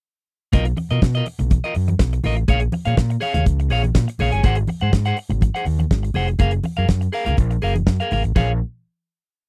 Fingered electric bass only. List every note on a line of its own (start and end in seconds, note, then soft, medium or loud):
0.54 0.70 B1 medium
0.91 0.99 B2 loud
1.03 1.19 B2 medium
1.40 1.57 B1 medium
1.76 1.93 F#2 medium
2.00 2.17 B1 medium
2.25 2.42 A1 medium
2.49 2.66 A#1 medium
2.87 2.94 A#2 loud
2.97 3.14 A#2 medium
3.36 3.43 D#2 medium
3.47 3.72 C#2 medium
3.72 3.88 A#1 medium
3.95 4.04 A#2 loud
4.20 4.29 A#1 medium
4.33 4.41 G1 medium
4.44 4.61 G#1 loud
4.82 4.90 G#2 medium
4.93 5.10 G#2 medium
5.31 5.48 G#1 medium
5.66 5.83 D#2 medium
5.91 6.08 G#1 medium
6.15 6.32 F1 medium
6.40 6.57 F#1 medium
6.78 6.86 F#2 loud
6.89 7.06 F#2 medium
7.27 7.35 C#2 medium
7.38 7.55 A#1 medium
7.63 7.80 F#1 medium
7.87 7.96 F#2 medium
8.12 8.21 G#1 medium
8.25 8.33 A1 medium
8.36 8.59 A#1 loud